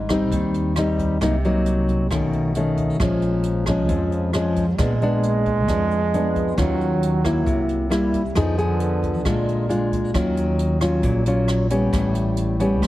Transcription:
Already playing: G#1 G#2
0.09 G3 C4 D#4, kick, cross-stick, closed hi-hat
0.31 D#2 D#3, kick, closed hi-hat
0.54 closed hi-hat
0.76 G3 C4 D#4, cross-stick, closed hi-hat
0.99 kick, closed hi-hat
1.21 C2 C3 F#3 A#3 D#4, kick, cross-stick, closed hi-hat
1.44 F#3 A#3 D#4, closed hi-hat
1.66 closed hi-hat
1.88 kick, closed hi-hat
2.11 B1 B2 D#3 A3 C#4, kick, cross-stick, closed hi-hat
2.33 closed hi-hat
2.55 D#3 A3 C#4, closed hi-hat
2.77 kick, closed hi-hat
3.00 A#1 A#2 F3 G#3 C#4, kick, cross-stick, closed hi-hat
3.22 closed hi-hat
3.43 closed hi-hat
3.66 F3 G#3 C#4, kick, cross-stick, closed hi-hat
3.89 F2, kick, closed hi-hat
4.12 closed hi-hat
4.33 F3 G#3 C#4, cross-stick, closed hi-hat
4.56 kick, closed hi-hat
4.77 A#1 A#2 G#3 B3 D4, kick, cross-stick, closed hi-hat
5.02 G#3 B3 D4, closed hi-hat
5.23 closed hi-hat
5.46 kick, closed hi-hat
5.68 F2 F3 G#3 B3 D4, kick, cross-stick, closed hi-hat
5.91 closed hi-hat
6.14 G#3 B3 D4, closed hi-hat
6.35 kick, closed hi-hat
6.58 D#2 D#3 F#3 C#4 F4, kick, cross-stick, closed hi-hat
6.81 closed hi-hat
7.03 closed hi-hat
7.24 A#3 E4, kick, cross-stick, closed hi-hat
7.46 C2 C3, kick, closed hi-hat
7.69 closed hi-hat
7.90 G3 A#3 E4, cross-stick, closed hi-hat
8.13 kick, closed hi-hat
8.30 C#3
8.35 F2 D3 F3 B3 D#4 G#4, kick, cross-stick, closed hi-hat
8.58 B3 G#4, closed hi-hat
8.80 closed hi-hat
9.03 kick, closed hi-hat
9.25 A#1 A#2 G#3 D4 F4, kick, cross-stick, closed hi-hat
9.48 closed hi-hat
9.69 G#3 D4 F4, closed hi-hat
9.92 kick, closed hi-hat
10.14 D#2 D#3 F#3 C#4 F4, kick, cross-stick, closed hi-hat
10.37 closed hi-hat
10.59 closed hi-hat
10.81 F#3 C#4 F4, cross-stick, closed hi-hat
11.03 A#1 A#2, kick, closed hi-hat
11.26 F#3 C#4 F4, closed hi-hat
11.48 cross-stick, closed hi-hat
11.70 G3 B3 C#4, closed hi-hat
11.93 A1 A2, kick, cross-stick, closed hi-hat
12.15 closed hi-hat
12.37 closed hi-hat
12.60 G3 B3 C#4, closed hi-hat
12.82 E2 E3, kick, cross-stick, closed hi-hat

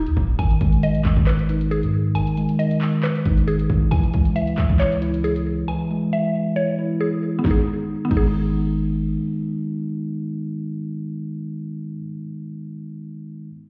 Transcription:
Already playing: D#4 G4 D#5 A#5
0.06 D#2, closed hi-hat
0.17 D#1, kick
0.39 G#1 D#3 G#5, kick, closed hi-hat
0.51 closed hi-hat
0.61 G#1 G#3, kick, closed hi-hat
0.72 closed hi-hat
0.83 D#3 D#5, closed hi-hat
0.95 B1, closed hi-hat
1.05 G#1, kick, clap, closed hi-hat
1.17 G#1, kick
1.27 D#3 B4, clap, closed hi-hat
1.39 closed hi-hat
1.49 D#4, closed hi-hat
1.61 closed hi-hat
1.71 G#4, closed hi-hat
1.83 G#2, closed hi-hat
2.15 G#1 D#3 G#5, closed hi-hat
2.27 closed hi-hat
2.37 G#3, closed hi-hat
2.49 closed hi-hat
2.59 D#3 D#5, closed hi-hat
2.71 closed hi-hat
2.81 clap, open hi-hat
3.03 D#3 B4, clap, closed hi-hat
3.15 closed hi-hat
3.25 G#1 D#4, kick, closed hi-hat
3.37 closed hi-hat
3.48 G#4, closed hi-hat
3.59 closed hi-hat
3.70 G1, kick
3.91 C#2 E3 G#5, kick, closed hi-hat
4.03 closed hi-hat
4.14 C#2 G#3, kick, closed hi-hat
4.25 closed hi-hat
4.36 E3 E5, closed hi-hat
4.47 closed hi-hat
4.58 C#2, kick, clap, closed hi-hat
4.70 C#2, kick
4.80 E3 C#5, clap, closed hi-hat
4.92 closed hi-hat
5.01 E4, closed hi-hat
5.14 closed hi-hat
5.24 G#4, closed hi-hat
5.36 closed hi-hat
5.68 E3 G#5
5.91 G#3
6.13 E3 E5
6.56 E3 C#5
6.79 E4
7.01 G#4
7.39 D#3 B3
7.43 G#1 G#3 D#4, kick, snare
7.47 B3 D#4
7.51 G#4
8.05 D#3 B3
8.09 G#1 G#3 D#4, kick, crash
8.13 B3 D#4
8.17 G#4

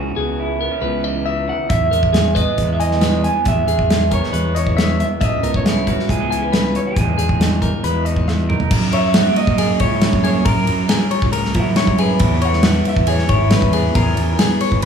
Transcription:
Already playing: C#2 C#3 E3 E4 F#4
0.16 C#2 B3 G#4
0.40 E4
0.61 B3 A#4
0.72 C#4
0.82 C#2 B3 B4
1.04 E3 D#5
1.25 C#3 E5
1.48 D#3 F#5
1.69 E2 E5, kick, closed hi-hat
1.91 E2 G#3 A#4, closed hi-hat
2.03 kick
2.13 G#4, snare, closed hi-hat
2.35 B3 B4 D#5, kick, closed hi-hat
2.58 E2 G#3, kick, closed hi-hat
2.73 E5
2.80 E3 D#5 G#5, closed hi-hat
2.91 snare
3.01 G#3 B4, snare, closed hi-hat
3.24 B3 G#5, closed hi-hat
3.45 E2 E5, kick, closed hi-hat
3.67 E2 G#3 G#4, closed hi-hat
3.79 kick
3.90 G#4, snare, closed hi-hat
4.11 B3 A#4 C#5, kick, closed hi-hat
4.23 snare
4.33 E2 G#3 B4, closed hi-hat
4.54 E3 C#5 D#5, closed hi-hat
4.67 kick
4.77 G#3 E5, snare, closed hi-hat
4.99 B3 E5, closed hi-hat
5.20 C#2 C#3 D#5 E5, kick, closed hi-hat
5.43 C#2 B3 A#4, closed hi-hat
5.54 C#5, kick
5.65 E4 G#4, snare, closed hi-hat
5.87 C#4 F#4 B4, kick, closed hi-hat
5.99 snare
6.09 C#2 G#3 G#4, kick, closed hi-hat
6.21 B3
6.31 E3 G#5, closed hi-hat
6.42 B4
6.52 B3 B4, snare, closed hi-hat
6.75 C#4 C#5, closed hi-hat
6.87 G#4
6.96 E2 E3 G#3 D#4, kick, closed hi-hat
7.18 E2 G#3 G#4, closed hi-hat
7.29 kick
7.41 D#4, snare, closed hi-hat
7.62 D#4 A#4, kick, closed hi-hat
7.80 E2 F#4 B4, closed hi-hat
7.84 G#3
8.05 E3 D#5, closed hi-hat
8.16 kick
8.28 G#3 E5, snare
8.49 D#4 A#4, mid tom
8.60 floor tom
8.71 F#2, kick, crash
8.93 F#3 C#5 E5, ride
9.14 G#3 F#4, snare, ride
9.26 A#3
9.36 F#3 D#5, ride
9.47 F#2, kick
9.58 C#3 G#4, ride
9.80 C#2 E4 C#5, kick, ride
10.01 C#4, snare, ride
10.13 F#2, kick
10.24 A#3 G#4 C#5, ride
10.45 F#2 A#4, kick, ride
10.67 F#2 F#3, ride
10.89 B3 G#4, snare, ride
11.00 C#4
11.11 F#3 C#5, ride
11.22 C#2, kick
11.32 C#3 A#4, ride
11.45 snare
11.54 F#3 E4, kick, ride
11.76 G#2 C#5, snare, ride
11.87 F#2, kick
11.98 F#2 G#4 B4, ride
12.19 E2 E3 B3 C#4 E4, kick, ride
12.42 E3 C#5 F#5, ride
12.53 snare
12.63 B3 F#4, snare, ride
12.85 E3 E5, ride
12.96 E2, kick
13.07 E2 G#4 C#5, ride
13.18 snare
13.29 G#1 E4 C#5, kick, ride
13.51 C#4 B4, snare, ride
13.62 E2, kick
13.73 B3 G#4, ride
13.95 E2 G#4 A#4, kick, ride
14.17 E2 E3, ride
14.39 B3 G#4, snare, ride
14.61 E3 C#5, ride
14.72 G#1, kick

